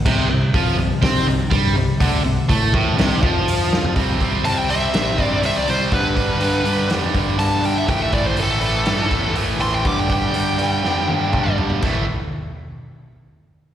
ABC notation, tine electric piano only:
X:1
M:4/4
L:1/8
Q:1/4=122
K:C
V:1 name="Tine electric piano" clef=bass
C,, C,, F,, C,, C, C,, G,, C,, | D,, C,, A,, A,,, C,, F,,3 | C,,2 C,,2 A,,, G,, C,, C,, | G,, G,, G,, G,, F,, G,, G,, G,, |
A,,,2 A,,,2 G,, E,, A,,, A,,, | G,, G,, G,, G,, F,, G,, G,, G,, | A,,, z6 z |]